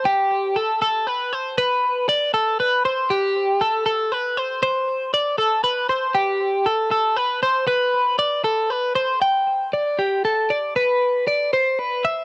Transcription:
X:1
M:6/8
L:1/8
Q:3/8=78
K:G
V:1 name="Clean electric guitar"
G2 A A B c | B2 d A B c | G2 A A B c | c2 d A B c |
G2 A A B c | B2 d A B c | g2 d G A d | B2 d c B e |]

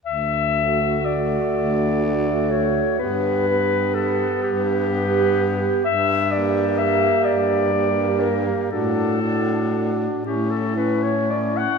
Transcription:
X:1
M:6/8
L:1/16
Q:3/8=41
K:D
V:1 name="Clarinet"
e4 d6 c2 | B4 A2 G6 | e2 d2 e2 d4 _B2 | A4- A z G A B c d f |]
V:2 name="Alto saxophone"
z2 F6 F4 | G2 G6 G4 | z2 G6 G4 | F2 F4 E2 E4 |]
V:3 name="Tenor saxophone"
z2 A,6 A,4 | B,2 B,6 B,4 | z2 _B,6 B,4 | D2 D4 C2 C4 |]
V:4 name="Baritone saxophone" clef=bass
D,,6 D,,6 | G,,6 G,,6 | G,,6 G,,6 | A,,6 A,,6 |]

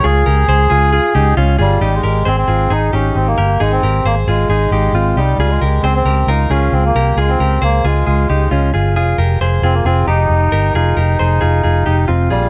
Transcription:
X:1
M:4/4
L:1/16
Q:1/4=134
K:Ab
V:1 name="Clean electric guitar"
[FA]2 [GB]2 [Ac]2 [FA]2 [FA]2 [EG]2 [DF]2 [FA]2 | [EG]2 [GB]2 [Ac]2 [FA]2 [EA]2 [EG]4 [GB]2 | [EA]2 [GB]2 [Ac]2 [FA]2 [EA]2 [EG]2 [CF]2 [EG]2 | [FA]2 [GB]2 [Ac]2 [GB]2 [FB]2 [FA]4 [GB]2 |
[FA]2 [GB]2 [Ac]2 [FA]2 [FA]2 [EG]2 [DF]2 [FA]2 | [FA]2 [GB]2 [Ac]2 [FA]2 [FA]2 [EG]4 [GB]2 | [FA]2 [GB]2 [Ac]2 [FA]2 [FA]2 [EG]2 [CF]2 [FA]2 |]
V:2 name="Melodica"
A12 z2 G,2- | G, A,3 C C3 E2 D2 C B,3 | A, C3 B,2 A,8 G,2- | G, A,3 C C3 E2 D2 C B,3 |
A, C3 B,2 A,8 z2 | z6 C B, C2 E6 | E12 z2 G,2 |]
V:3 name="Fingered electric bass" clef=bass
D,,2 D,,2 D,,2 D,,3 z D,,2 D,,2 G,,,2 | A,,,2 A,,,2 A,,,2 A,,,2 A,,,2 A,,,2 A,,,2 G,,,2 | A,,,2 A,,,2 A,,,2 A,,,2 A,,,2 A,,,2 A,,,2 C,,2 | D,,2 D,,2 D,,2 D,,2 D,,2 D,,2 D,,2 C,,2 |
D,,2 D,,2 D,,2 D,,2 D,,2 D,,2 D,,2 G,,,2 | F,,,2 F,,,2 F,,,2 F,,,2 F,,,2 F,,,2 F,,,2 G,,,2 | F,,,2 F,,,2 F,,,2 F,,,2 F,,,2 F,,,2 F,,,2 B,,,2 |]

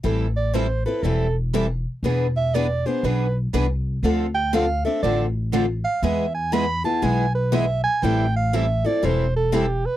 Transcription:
X:1
M:4/4
L:1/8
Q:"Swing" 1/4=120
K:Am
V:1 name="Soprano saxophone"
z d c B A z3 | z e d c B z3 | z g f e d z2 f | e ^g b a g B e g |
g f e d c A G B |]
V:2 name="Steel-string acoustic guitar"
[E,G,CEA] z [E,G,CEA] [CEA] [E,G,CEA] z [E,G,CEA] z | [E,B,D^G] z [E,B,DG] [B,DG] [E,B,DG] z [E,B,DG] z | [D,F,CDA] z [D,F,CDA] [CDA] [D,F,CDA] z [D,F,CDA] z | [E,^G,B,E^G] z [E,G,B,EG] [B,EG] [E,G,B,EG] z [E,G,B,EG] z |
[E,G,CEA] z [E,G,CEA] [CEA] [E,G,CEA] z [E,G,CEA] z |]
V:3 name="Steel-string acoustic guitar"
[E,G,CEA] z [E,G,CEA] z [E,G,CEA] z [E,G,CEA] z | [E,B,D^GB] z [E,B,DGB] z [E,B,DGB] z [E,B,DGB] z | [D,A,CFA] z [D,A,CFA] z [D,A,CFA] z [D,A,CFA] z | [E,^G,B,E^G] z [E,G,B,EG] z [E,G,B,EG] z [E,G,B,EG] z |
[E,G,CEA] z [E,G,CEA] z [E,G,CEA] z [E,G,CEA] z |]
V:4 name="Upright bass" clef=bass
A,,,4 E,,,4 | E,,,4 B,,,2 C,,2 | D,,4 A,,,4 | E,,4 B,,,4 |
A,,,4 E,,,4 |]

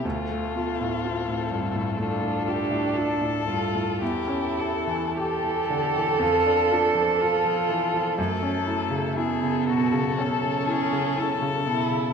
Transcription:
X:1
M:4/4
L:1/16
Q:1/4=60
K:Ddor
V:1 name="Violin"
A16 | A16 | [K:F#m] A16 |]
V:2 name="Violin"
F8 F2 G2 A4 | G2 A2 G4 F2 D2 F4 | [K:F#m] A4 G2 F2 A2 G2 A4 |]
V:3 name="Cello"
A,2 B,2 C4 D6 F2 | E4 A12 | [K:F#m] A,2 A,2 B,4 C6 E2 |]
V:4 name="Grand piano" clef=bass
D,, A, F A,, F A,, G,, A,, A, A,, F A,, F A,, G,, A,, | E,, ^C G E, G E, D, E, F,, D F F, F F, E, F, | [K:F#m] F,, C E C, E C, B,, C, C C, E C, E C, B,, C, |]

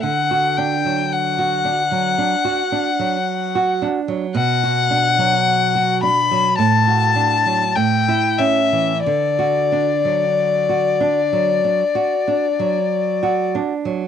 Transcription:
X:1
M:4/4
L:1/16
Q:1/4=53
K:D
V:1 name="Violin"
f2 g2 f8- f2 z2 | f6 b2 a4 g2 e2 | d12- d2 z2 |]
V:2 name="Nylon-string guitar"
D, F D F,2 F D F, D F D F,2 F D F, | B,, F D F,2 F D F, A,, F D F, A,, E C E, | D, F D F,2 F D F, D F D F,2 F D F, |]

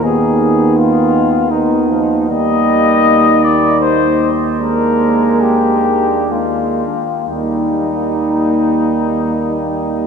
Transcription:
X:1
M:3/4
L:1/8
Q:1/4=75
K:Eb
V:1 name="Flugelhorn"
A2 F2 E2 | e3 d c z | B2 G2 F2 | E6 |]
V:2 name="French horn section"
E4 E2 | E6 | D4 D z | E6 |]
V:3 name="Euphonium"
_C4 C2 | B,4- B, z | B,4 B, z | B,6 |]
V:4 name="Trombone" clef=bass
E,4 E, F, | G,4- G, z | A,4 A, z | G,6 |]
V:5 name="Tuba" clef=bass
E,,6 | E,,6- | E,,4- E,, z | E,,6 |]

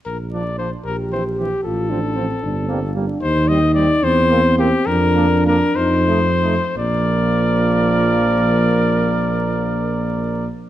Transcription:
X:1
M:6/8
L:1/16
Q:3/8=70
K:Bb
V:1 name="Trumpet"
B2 d2 c2 B2 c2 G2 | A8- A2 z2 | c2 e2 d2 c4 G2 | B4 B2 c6 |
d12- | d12 |]
V:2 name="French horn"
z6 G6 | F2 D2 C2 D2 C2 D2 | E6 C6 | D6 E3 z3 |
B,12- | B,12 |]
V:3 name="Flugelhorn"
z2 D2 D2 z2 C2 C2 | z2 C2 C2 z2 B,2 B,2 | z2 C2 C2 z2 C2 C2 | z2 D2 D2 z2 E2 E2 |
B12- | B12 |]
V:4 name="Trombone" clef=bass
z2 F,2 F,2 z2 =E,2 E,2 | z2 F,2 F,2 z2 G,2 G,2 | z2 G,2 G,2 z2 B,2 B,2 | z2 B,2 B,2 z2 A,2 A,2 |
F,12- | F,12 |]
V:5 name="Tuba" clef=bass
B,,,6 B,,,6 | A,,,6 G,,,6 | E,,6 =E,,6 | F,,6 F,,6 |
B,,,12- | B,,,12 |]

